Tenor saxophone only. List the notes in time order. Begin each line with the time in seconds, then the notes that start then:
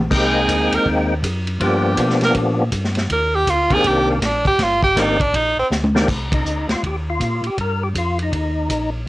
0.16 G#4
0.75 A#4
1.64 G4
2.25 A#4
3.13 A#4
3.35 G4
3.50 F4
3.73 G#4
3.88 G4
4.11 A#3
4.25 D4
4.47 G4
4.63 F4
4.84 G4
5.00 D#4
5.22 D4
5.36 D#4
5.59 C4